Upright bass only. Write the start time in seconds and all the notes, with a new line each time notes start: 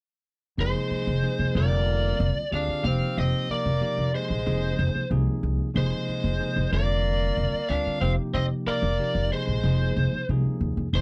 0.58 F1
0.91 muted upright bass stroke
1.07 F1
1.39 F1
1.55 F1
2.20 F1
2.37 muted upright bass stroke
2.52 D2
2.68 muted upright bass stroke
2.84 F1
3.17 F1
3.49 muted upright bass stroke
3.65 F1
3.98 F1
4.30 A#1
4.47 F1
4.79 F1
4.95 muted upright bass stroke
5.11 C2
5.27 muted upright bass stroke
5.43 C2
5.76 F1
6.08 muted upright bass stroke
6.24 F1
6.56 F1
6.72 F1
7.37 F1
7.53 muted upright bass stroke
7.69 D2
7.86 muted upright bass stroke
8.01 F1
8.34 F1
8.66 muted upright bass stroke
8.82 F1
9.15 F1
9.47 A#1
9.64 F1
9.97 F1
10.13 muted upright bass stroke
10.29 C2
10.45 muted upright bass stroke
10.61 D#2
10.77 F2
10.93 F1